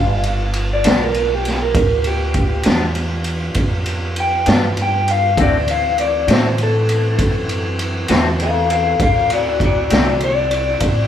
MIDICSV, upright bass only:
0, 0, Header, 1, 2, 480
1, 0, Start_track
1, 0, Tempo, 604230
1, 1397, Time_signature, 12, 3, 24, 8
1, 8796, End_track
2, 0, Start_track
2, 0, Title_t, "Upright bass"
2, 0, Program_c, 0, 32
2, 0, Note_on_c, 0, 31, 81
2, 651, Note_off_c, 0, 31, 0
2, 680, Note_on_c, 0, 35, 86
2, 1377, Note_off_c, 0, 35, 0
2, 1386, Note_on_c, 0, 38, 74
2, 2089, Note_off_c, 0, 38, 0
2, 2115, Note_on_c, 0, 40, 90
2, 2814, Note_off_c, 0, 40, 0
2, 2822, Note_on_c, 0, 41, 76
2, 3527, Note_off_c, 0, 41, 0
2, 3552, Note_on_c, 0, 43, 89
2, 4252, Note_off_c, 0, 43, 0
2, 4269, Note_on_c, 0, 38, 78
2, 4970, Note_off_c, 0, 38, 0
2, 4986, Note_on_c, 0, 45, 84
2, 5689, Note_off_c, 0, 45, 0
2, 5706, Note_on_c, 0, 42, 83
2, 6409, Note_off_c, 0, 42, 0
2, 6435, Note_on_c, 0, 40, 90
2, 7134, Note_off_c, 0, 40, 0
2, 7149, Note_on_c, 0, 38, 75
2, 7850, Note_off_c, 0, 38, 0
2, 7874, Note_on_c, 0, 36, 87
2, 8573, Note_off_c, 0, 36, 0
2, 8585, Note_on_c, 0, 33, 84
2, 8796, Note_off_c, 0, 33, 0
2, 8796, End_track
0, 0, End_of_file